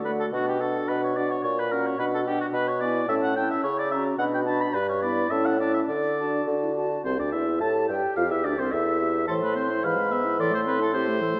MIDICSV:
0, 0, Header, 1, 6, 480
1, 0, Start_track
1, 0, Key_signature, 2, "major"
1, 0, Tempo, 552486
1, 285, Time_signature, 2, 2, 24, 8
1, 4121, Tempo, 574163
1, 6049, Key_signature, 0, "major"
1, 6521, Tempo, 552995
1, 9806, End_track
2, 0, Start_track
2, 0, Title_t, "Flute"
2, 0, Program_c, 0, 73
2, 38, Note_on_c, 0, 78, 37
2, 278, Note_off_c, 0, 78, 0
2, 287, Note_on_c, 0, 78, 38
2, 525, Note_off_c, 0, 78, 0
2, 534, Note_on_c, 0, 78, 39
2, 1006, Note_off_c, 0, 78, 0
2, 1021, Note_on_c, 0, 78, 43
2, 1251, Note_off_c, 0, 78, 0
2, 1498, Note_on_c, 0, 78, 42
2, 1727, Note_off_c, 0, 78, 0
2, 1737, Note_on_c, 0, 78, 40
2, 1966, Note_off_c, 0, 78, 0
2, 1973, Note_on_c, 0, 78, 43
2, 2203, Note_off_c, 0, 78, 0
2, 2453, Note_on_c, 0, 80, 43
2, 2682, Note_off_c, 0, 80, 0
2, 2690, Note_on_c, 0, 81, 46
2, 2920, Note_off_c, 0, 81, 0
2, 2926, Note_on_c, 0, 81, 47
2, 3158, Note_off_c, 0, 81, 0
2, 3409, Note_on_c, 0, 82, 49
2, 3638, Note_off_c, 0, 82, 0
2, 3653, Note_on_c, 0, 83, 44
2, 3881, Note_off_c, 0, 83, 0
2, 3885, Note_on_c, 0, 83, 49
2, 4119, Note_off_c, 0, 83, 0
2, 4360, Note_on_c, 0, 83, 47
2, 4589, Note_off_c, 0, 83, 0
2, 4595, Note_on_c, 0, 81, 47
2, 4829, Note_off_c, 0, 81, 0
2, 4843, Note_on_c, 0, 81, 45
2, 5077, Note_off_c, 0, 81, 0
2, 5326, Note_on_c, 0, 81, 44
2, 5801, Note_off_c, 0, 81, 0
2, 5814, Note_on_c, 0, 81, 44
2, 6048, Note_off_c, 0, 81, 0
2, 6061, Note_on_c, 0, 72, 50
2, 6174, Note_on_c, 0, 74, 48
2, 6187, Note_off_c, 0, 72, 0
2, 6283, Note_off_c, 0, 74, 0
2, 6288, Note_on_c, 0, 76, 53
2, 6517, Note_off_c, 0, 76, 0
2, 6523, Note_on_c, 0, 81, 58
2, 6759, Note_off_c, 0, 81, 0
2, 6763, Note_on_c, 0, 79, 51
2, 7004, Note_on_c, 0, 77, 55
2, 7017, Note_off_c, 0, 79, 0
2, 7121, Note_on_c, 0, 76, 50
2, 7134, Note_off_c, 0, 77, 0
2, 7244, Note_on_c, 0, 74, 51
2, 7257, Note_off_c, 0, 76, 0
2, 7361, Note_on_c, 0, 72, 50
2, 7374, Note_off_c, 0, 74, 0
2, 7479, Note_off_c, 0, 72, 0
2, 7484, Note_on_c, 0, 76, 59
2, 7958, Note_off_c, 0, 76, 0
2, 7967, Note_on_c, 0, 84, 44
2, 8417, Note_off_c, 0, 84, 0
2, 8460, Note_on_c, 0, 83, 49
2, 8938, Note_on_c, 0, 84, 54
2, 8951, Note_off_c, 0, 83, 0
2, 9608, Note_off_c, 0, 84, 0
2, 9806, End_track
3, 0, Start_track
3, 0, Title_t, "Oboe"
3, 0, Program_c, 1, 68
3, 43, Note_on_c, 1, 71, 57
3, 98, Note_off_c, 1, 71, 0
3, 173, Note_on_c, 1, 69, 56
3, 225, Note_off_c, 1, 69, 0
3, 287, Note_on_c, 1, 66, 65
3, 406, Note_off_c, 1, 66, 0
3, 414, Note_on_c, 1, 67, 53
3, 525, Note_on_c, 1, 69, 55
3, 538, Note_off_c, 1, 67, 0
3, 769, Note_on_c, 1, 71, 62
3, 782, Note_off_c, 1, 69, 0
3, 891, Note_off_c, 1, 71, 0
3, 902, Note_on_c, 1, 73, 56
3, 1012, Note_on_c, 1, 74, 63
3, 1025, Note_off_c, 1, 73, 0
3, 1128, Note_off_c, 1, 74, 0
3, 1133, Note_on_c, 1, 73, 60
3, 1243, Note_off_c, 1, 73, 0
3, 1248, Note_on_c, 1, 73, 73
3, 1379, Note_on_c, 1, 71, 63
3, 1392, Note_off_c, 1, 73, 0
3, 1492, Note_on_c, 1, 70, 60
3, 1505, Note_off_c, 1, 71, 0
3, 1619, Note_on_c, 1, 73, 55
3, 1632, Note_off_c, 1, 70, 0
3, 1726, Note_off_c, 1, 73, 0
3, 1732, Note_on_c, 1, 71, 68
3, 1784, Note_off_c, 1, 71, 0
3, 1863, Note_on_c, 1, 69, 58
3, 1913, Note_off_c, 1, 69, 0
3, 1971, Note_on_c, 1, 67, 61
3, 2085, Note_off_c, 1, 67, 0
3, 2092, Note_on_c, 1, 66, 58
3, 2144, Note_off_c, 1, 66, 0
3, 2202, Note_on_c, 1, 71, 77
3, 2324, Note_on_c, 1, 73, 65
3, 2337, Note_off_c, 1, 71, 0
3, 2432, Note_off_c, 1, 73, 0
3, 2438, Note_on_c, 1, 74, 68
3, 2674, Note_off_c, 1, 74, 0
3, 2681, Note_on_c, 1, 76, 75
3, 2735, Note_off_c, 1, 76, 0
3, 2806, Note_on_c, 1, 78, 66
3, 2911, Note_off_c, 1, 78, 0
3, 2917, Note_on_c, 1, 79, 73
3, 3036, Note_off_c, 1, 79, 0
3, 3046, Note_on_c, 1, 76, 70
3, 3153, Note_off_c, 1, 76, 0
3, 3158, Note_on_c, 1, 73, 76
3, 3276, Note_off_c, 1, 73, 0
3, 3289, Note_on_c, 1, 74, 71
3, 3395, Note_off_c, 1, 74, 0
3, 3400, Note_on_c, 1, 76, 65
3, 3507, Note_off_c, 1, 76, 0
3, 3638, Note_on_c, 1, 78, 76
3, 3692, Note_off_c, 1, 78, 0
3, 3771, Note_on_c, 1, 79, 69
3, 3822, Note_off_c, 1, 79, 0
3, 3882, Note_on_c, 1, 81, 78
3, 4006, Note_on_c, 1, 83, 73
3, 4019, Note_off_c, 1, 81, 0
3, 4123, Note_on_c, 1, 71, 80
3, 4136, Note_off_c, 1, 83, 0
3, 4238, Note_off_c, 1, 71, 0
3, 4245, Note_on_c, 1, 73, 68
3, 4349, Note_off_c, 1, 73, 0
3, 4354, Note_on_c, 1, 74, 67
3, 4590, Note_on_c, 1, 76, 72
3, 4603, Note_off_c, 1, 74, 0
3, 4716, Note_on_c, 1, 78, 64
3, 4729, Note_off_c, 1, 76, 0
3, 4832, Note_off_c, 1, 78, 0
3, 4837, Note_on_c, 1, 74, 63
3, 4948, Note_off_c, 1, 74, 0
3, 4953, Note_on_c, 1, 76, 59
3, 5009, Note_off_c, 1, 76, 0
3, 5069, Note_on_c, 1, 74, 68
3, 5551, Note_off_c, 1, 74, 0
3, 6046, Note_on_c, 1, 72, 60
3, 6158, Note_off_c, 1, 72, 0
3, 6170, Note_on_c, 1, 74, 53
3, 6272, Note_off_c, 1, 74, 0
3, 6277, Note_on_c, 1, 76, 55
3, 6511, Note_off_c, 1, 76, 0
3, 6515, Note_on_c, 1, 81, 64
3, 6625, Note_off_c, 1, 81, 0
3, 6752, Note_on_c, 1, 79, 52
3, 6993, Note_off_c, 1, 79, 0
3, 6998, Note_on_c, 1, 77, 65
3, 7118, Note_off_c, 1, 77, 0
3, 7125, Note_on_c, 1, 76, 58
3, 7241, Note_on_c, 1, 74, 56
3, 7255, Note_off_c, 1, 76, 0
3, 7366, Note_on_c, 1, 72, 55
3, 7379, Note_off_c, 1, 74, 0
3, 7477, Note_on_c, 1, 76, 66
3, 7490, Note_off_c, 1, 72, 0
3, 7960, Note_off_c, 1, 76, 0
3, 7966, Note_on_c, 1, 69, 66
3, 8021, Note_off_c, 1, 69, 0
3, 8095, Note_on_c, 1, 71, 61
3, 8200, Note_off_c, 1, 71, 0
3, 8205, Note_on_c, 1, 72, 65
3, 8452, Note_on_c, 1, 77, 76
3, 8465, Note_off_c, 1, 72, 0
3, 8694, Note_on_c, 1, 76, 65
3, 8707, Note_off_c, 1, 77, 0
3, 8933, Note_off_c, 1, 76, 0
3, 8938, Note_on_c, 1, 74, 81
3, 9052, Note_off_c, 1, 74, 0
3, 9063, Note_on_c, 1, 72, 64
3, 9114, Note_off_c, 1, 72, 0
3, 9173, Note_on_c, 1, 71, 65
3, 9287, Note_off_c, 1, 71, 0
3, 9301, Note_on_c, 1, 69, 60
3, 9403, Note_off_c, 1, 69, 0
3, 9408, Note_on_c, 1, 72, 74
3, 9806, Note_off_c, 1, 72, 0
3, 9806, End_track
4, 0, Start_track
4, 0, Title_t, "Clarinet"
4, 0, Program_c, 2, 71
4, 43, Note_on_c, 2, 66, 39
4, 281, Note_off_c, 2, 66, 0
4, 293, Note_on_c, 2, 66, 38
4, 526, Note_off_c, 2, 66, 0
4, 532, Note_on_c, 2, 66, 41
4, 1004, Note_off_c, 2, 66, 0
4, 1017, Note_on_c, 2, 66, 41
4, 1249, Note_off_c, 2, 66, 0
4, 1491, Note_on_c, 2, 66, 41
4, 1724, Note_off_c, 2, 66, 0
4, 1734, Note_on_c, 2, 66, 45
4, 1965, Note_off_c, 2, 66, 0
4, 1971, Note_on_c, 2, 66, 46
4, 2202, Note_off_c, 2, 66, 0
4, 2447, Note_on_c, 2, 64, 45
4, 2679, Note_off_c, 2, 64, 0
4, 2683, Note_on_c, 2, 64, 48
4, 2917, Note_off_c, 2, 64, 0
4, 2924, Note_on_c, 2, 64, 48
4, 3157, Note_off_c, 2, 64, 0
4, 3405, Note_on_c, 2, 66, 49
4, 3636, Note_off_c, 2, 66, 0
4, 3643, Note_on_c, 2, 66, 50
4, 3876, Note_off_c, 2, 66, 0
4, 3881, Note_on_c, 2, 66, 48
4, 4117, Note_off_c, 2, 66, 0
4, 4355, Note_on_c, 2, 64, 47
4, 4586, Note_off_c, 2, 64, 0
4, 4593, Note_on_c, 2, 64, 47
4, 4828, Note_off_c, 2, 64, 0
4, 4834, Note_on_c, 2, 64, 44
4, 5072, Note_off_c, 2, 64, 0
4, 5319, Note_on_c, 2, 66, 45
4, 5797, Note_off_c, 2, 66, 0
4, 5810, Note_on_c, 2, 66, 43
4, 6045, Note_off_c, 2, 66, 0
4, 6521, Note_on_c, 2, 67, 60
4, 7490, Note_on_c, 2, 69, 54
4, 7503, Note_off_c, 2, 67, 0
4, 7730, Note_off_c, 2, 69, 0
4, 7735, Note_on_c, 2, 67, 51
4, 7977, Note_on_c, 2, 72, 61
4, 7990, Note_off_c, 2, 67, 0
4, 8454, Note_on_c, 2, 71, 62
4, 8467, Note_off_c, 2, 72, 0
4, 8934, Note_off_c, 2, 71, 0
4, 8940, Note_on_c, 2, 69, 63
4, 9414, Note_on_c, 2, 67, 68
4, 9427, Note_off_c, 2, 69, 0
4, 9644, Note_off_c, 2, 67, 0
4, 9649, Note_on_c, 2, 69, 62
4, 9806, Note_off_c, 2, 69, 0
4, 9806, End_track
5, 0, Start_track
5, 0, Title_t, "French horn"
5, 0, Program_c, 3, 60
5, 45, Note_on_c, 3, 57, 35
5, 282, Note_off_c, 3, 57, 0
5, 288, Note_on_c, 3, 62, 43
5, 526, Note_off_c, 3, 62, 0
5, 533, Note_on_c, 3, 62, 39
5, 1005, Note_off_c, 3, 62, 0
5, 1013, Note_on_c, 3, 62, 39
5, 1247, Note_off_c, 3, 62, 0
5, 1489, Note_on_c, 3, 61, 41
5, 1723, Note_off_c, 3, 61, 0
5, 1735, Note_on_c, 3, 62, 43
5, 1965, Note_off_c, 3, 62, 0
5, 1971, Note_on_c, 3, 62, 44
5, 2202, Note_off_c, 3, 62, 0
5, 2448, Note_on_c, 3, 59, 45
5, 2679, Note_off_c, 3, 59, 0
5, 2684, Note_on_c, 3, 61, 49
5, 2918, Note_off_c, 3, 61, 0
5, 2929, Note_on_c, 3, 61, 49
5, 3159, Note_off_c, 3, 61, 0
5, 3407, Note_on_c, 3, 61, 50
5, 3637, Note_off_c, 3, 61, 0
5, 3641, Note_on_c, 3, 62, 49
5, 3868, Note_off_c, 3, 62, 0
5, 3873, Note_on_c, 3, 62, 47
5, 4113, Note_off_c, 3, 62, 0
5, 4359, Note_on_c, 3, 59, 44
5, 4585, Note_off_c, 3, 59, 0
5, 4590, Note_on_c, 3, 61, 46
5, 4826, Note_off_c, 3, 61, 0
5, 4836, Note_on_c, 3, 61, 44
5, 5074, Note_off_c, 3, 61, 0
5, 5326, Note_on_c, 3, 62, 42
5, 5514, Note_off_c, 3, 62, 0
5, 5573, Note_on_c, 3, 62, 56
5, 5626, Note_off_c, 3, 62, 0
5, 5702, Note_on_c, 3, 64, 51
5, 5753, Note_off_c, 3, 64, 0
5, 5814, Note_on_c, 3, 66, 50
5, 5921, Note_off_c, 3, 66, 0
5, 6047, Note_on_c, 3, 60, 57
5, 6164, Note_on_c, 3, 62, 49
5, 6177, Note_off_c, 3, 60, 0
5, 6287, Note_on_c, 3, 64, 51
5, 6300, Note_off_c, 3, 62, 0
5, 6520, Note_on_c, 3, 69, 57
5, 6533, Note_off_c, 3, 64, 0
5, 6759, Note_off_c, 3, 69, 0
5, 6764, Note_on_c, 3, 67, 48
5, 6872, Note_off_c, 3, 67, 0
5, 7003, Note_on_c, 3, 65, 67
5, 7057, Note_off_c, 3, 65, 0
5, 7123, Note_on_c, 3, 64, 54
5, 7234, Note_off_c, 3, 64, 0
5, 7239, Note_on_c, 3, 62, 55
5, 7358, Note_off_c, 3, 62, 0
5, 7363, Note_on_c, 3, 60, 52
5, 7484, Note_on_c, 3, 64, 61
5, 7497, Note_off_c, 3, 60, 0
5, 7965, Note_off_c, 3, 64, 0
5, 7970, Note_on_c, 3, 52, 51
5, 8088, Note_on_c, 3, 57, 46
5, 8101, Note_off_c, 3, 52, 0
5, 8208, Note_on_c, 3, 60, 46
5, 8221, Note_off_c, 3, 57, 0
5, 8331, Note_on_c, 3, 64, 45
5, 8344, Note_off_c, 3, 60, 0
5, 8443, Note_off_c, 3, 64, 0
5, 8448, Note_on_c, 3, 52, 49
5, 8571, Note_on_c, 3, 56, 49
5, 8584, Note_off_c, 3, 52, 0
5, 8688, Note_on_c, 3, 59, 50
5, 8701, Note_off_c, 3, 56, 0
5, 8812, Note_on_c, 3, 64, 47
5, 8826, Note_off_c, 3, 59, 0
5, 8927, Note_off_c, 3, 64, 0
5, 8932, Note_on_c, 3, 52, 60
5, 9049, Note_on_c, 3, 57, 52
5, 9062, Note_off_c, 3, 52, 0
5, 9167, Note_on_c, 3, 60, 52
5, 9180, Note_off_c, 3, 57, 0
5, 9285, Note_on_c, 3, 64, 51
5, 9298, Note_off_c, 3, 60, 0
5, 9406, Note_on_c, 3, 60, 52
5, 9419, Note_off_c, 3, 64, 0
5, 9529, Note_on_c, 3, 57, 54
5, 9542, Note_off_c, 3, 60, 0
5, 9646, Note_on_c, 3, 52, 56
5, 9659, Note_off_c, 3, 57, 0
5, 9762, Note_on_c, 3, 57, 54
5, 9775, Note_off_c, 3, 52, 0
5, 9806, Note_off_c, 3, 57, 0
5, 9806, End_track
6, 0, Start_track
6, 0, Title_t, "Bassoon"
6, 0, Program_c, 4, 70
6, 0, Note_on_c, 4, 50, 50
6, 227, Note_off_c, 4, 50, 0
6, 282, Note_on_c, 4, 47, 53
6, 713, Note_off_c, 4, 47, 0
6, 773, Note_on_c, 4, 47, 55
6, 1196, Note_off_c, 4, 47, 0
6, 1249, Note_on_c, 4, 46, 57
6, 1671, Note_off_c, 4, 46, 0
6, 1725, Note_on_c, 4, 47, 57
6, 2147, Note_off_c, 4, 47, 0
6, 2199, Note_on_c, 4, 47, 57
6, 2622, Note_off_c, 4, 47, 0
6, 2679, Note_on_c, 4, 45, 64
6, 3032, Note_off_c, 4, 45, 0
6, 3159, Note_on_c, 4, 49, 63
6, 3580, Note_off_c, 4, 49, 0
6, 3637, Note_on_c, 4, 47, 62
6, 4063, Note_off_c, 4, 47, 0
6, 4121, Note_on_c, 4, 43, 62
6, 4535, Note_off_c, 4, 43, 0
6, 4594, Note_on_c, 4, 45, 59
6, 5020, Note_off_c, 4, 45, 0
6, 5079, Note_on_c, 4, 50, 56
6, 5508, Note_off_c, 4, 50, 0
6, 5568, Note_on_c, 4, 50, 53
6, 5995, Note_off_c, 4, 50, 0
6, 6051, Note_on_c, 4, 36, 59
6, 6160, Note_off_c, 4, 36, 0
6, 6174, Note_on_c, 4, 38, 48
6, 6291, Note_on_c, 4, 40, 53
6, 6304, Note_off_c, 4, 38, 0
6, 6523, Note_on_c, 4, 45, 60
6, 6537, Note_off_c, 4, 40, 0
6, 6758, Note_off_c, 4, 45, 0
6, 6763, Note_on_c, 4, 43, 42
6, 6871, Note_off_c, 4, 43, 0
6, 7004, Note_on_c, 4, 41, 61
6, 7123, Note_on_c, 4, 40, 51
6, 7136, Note_off_c, 4, 41, 0
6, 7248, Note_on_c, 4, 38, 51
6, 7261, Note_off_c, 4, 40, 0
6, 7362, Note_off_c, 4, 38, 0
6, 7367, Note_on_c, 4, 36, 48
6, 7485, Note_off_c, 4, 36, 0
6, 7490, Note_on_c, 4, 40, 58
6, 7961, Note_off_c, 4, 40, 0
6, 7975, Note_on_c, 4, 45, 52
6, 8461, Note_on_c, 4, 44, 57
6, 8474, Note_off_c, 4, 45, 0
6, 8934, Note_on_c, 4, 45, 63
6, 8947, Note_off_c, 4, 44, 0
6, 9806, Note_off_c, 4, 45, 0
6, 9806, End_track
0, 0, End_of_file